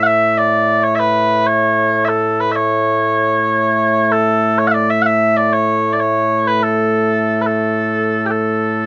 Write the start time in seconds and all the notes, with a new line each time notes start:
Already playing: A2 A3
0.03 E5 F#5
0.38 D5
0.84 C#5
0.95 E5
1.00 B4
1.47 C#5
2.05 A4 E5
2.40 B4
2.52 E5
2.56 C#5
4.12 A4
4.58 C#5
4.67 E5 F#5
4.74 D5
4.90 E5
5.02 F#5
5.06 E5
5.37 D5
5.53 C#5
5.93 D5
6.00 C#5
6.47 B4
6.63 A4
7.41 B4
7.46 A4
8.26 G4
8.31 A4